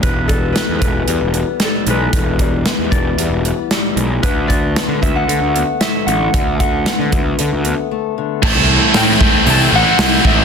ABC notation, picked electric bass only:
X:1
M:4/4
L:1/16
Q:1/4=114
K:Em
V:1 name="Picked electric bass" clef=bass
E,,,4- E,,, E,, E,,,2 E,, E,,,2 z3 B,,,2 | E,,,4- E,,, E,, E,,,2 E,, E,,,2 z3 B,,,2 | D,,4- D,, D, D,,2 D, D,,2 z3 A,,,2 | D,,4- D,, D, D,,2 D, D,,2 z4 z |
A,,, C,,2 z A,,2 z2 C,,2 A,,, z C,,2 A,,,2 |]